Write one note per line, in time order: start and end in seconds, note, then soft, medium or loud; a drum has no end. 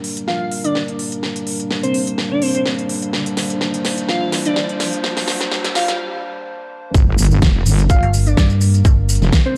0.00 6.90 G3 medium
0.00 6.90 A#3 medium
0.00 6.90 D4 medium
0.00 3.10 A#4 medium
0.00 open hi-hat loud
0.00 riser medium
0.17 closed hi-hat medium
0.27 0.42 F4 medium
0.27 snare medium
0.52 open hi-hat loud
0.64 0.77 D4 medium
0.64 closed hi-hat medium
0.75 snare medium
0.88 closed hi-hat soft
0.99 open hi-hat loud
1.12 closed hi-hat medium
1.23 snare medium
1.36 closed hi-hat medium
1.47 open hi-hat loud
1.60 closed hi-hat medium
1.71 snare medium
1.83 1.96 C4 medium
1.83 closed hi-hat medium
1.94 open hi-hat loud
2.07 closed hi-hat medium
2.18 snare medium
2.31 2.40 D4 medium
2.42 2.50 C4 medium
2.42 open hi-hat loud
2.55 2.62 C4 medium
2.55 closed hi-hat medium
2.66 snare medium
2.79 closed hi-hat soft
2.89 open hi-hat loud
3.02 closed hi-hat medium
3.13 6.90 C5 medium
3.13 snare medium
3.26 closed hi-hat soft
3.37 snare medium
3.37 open hi-hat loud
3.50 closed hi-hat medium
3.61 snare medium
3.74 closed hi-hat medium
3.85 snare medium
3.85 open hi-hat loud
3.98 closed hi-hat medium
4.09 4.23 F4 loud
4.09 snare medium
4.32 snare medium
4.32 open hi-hat loud
4.45 4.58 D4 medium
4.45 closed hi-hat medium
4.56 snare medium
4.69 closed hi-hat soft
4.80 snare medium
4.80 open hi-hat loud
4.93 closed hi-hat medium
5.04 snare medium
5.17 snare medium
5.17 open hi-hat medium
5.28 snare medium
5.28 open hi-hat loud
5.41 snare medium
5.41 closed hi-hat medium
5.51 snare loud
5.64 snare medium
5.64 closed hi-hat medium
5.75 5.84 F4 medium
5.75 snare loud
5.75 open hi-hat loud
5.88 5.95 F4 medium
5.88 snare medium
5.88 closed hi-hat medium
6.94 7.40 G1 loud
6.94 9.57 G3 medium
6.94 9.57 A#3 medium
6.94 9.57 D4 medium
6.94 9.57 A#4 medium
6.94 kick loud
6.94 closed hi-hat medium
6.94 impact medium
6.94 maracas medium
7.18 open hi-hat loud
7.18 maracas loud
7.25 closed hi-hat medium
7.31 maracas soft
7.42 7.64 F1 loud
7.42 kick loud
7.42 snare loud
7.42 closed hi-hat medium
7.42 maracas soft
7.66 8.00 G1 medium
7.66 open hi-hat loud
7.66 maracas loud
7.79 closed hi-hat medium
7.79 maracas soft
7.90 8.04 F4 loud
7.90 kick loud
7.90 closed hi-hat medium
7.90 maracas medium
8.03 8.36 G1 loud
8.03 closed hi-hat medium
8.13 open hi-hat loud
8.13 maracas loud
8.26 8.39 D4 medium
8.26 closed hi-hat medium
8.26 maracas soft
8.37 8.83 G2 loud
8.37 kick loud
8.37 snare loud
8.37 closed hi-hat medium
8.37 maracas medium
8.50 maracas soft
8.61 open hi-hat loud
8.61 maracas loud
8.74 closed hi-hat medium
8.74 maracas soft
8.85 9.20 G1 loud
8.85 kick loud
8.85 closed hi-hat medium
8.85 maracas medium
9.09 open hi-hat loud
9.09 maracas loud
9.15 closed hi-hat medium
9.22 9.31 F1 loud
9.22 snare soft
9.22 maracas soft
9.32 kick loud
9.32 snare loud
9.32 closed hi-hat medium
9.32 maracas medium
9.46 9.57 C4 medium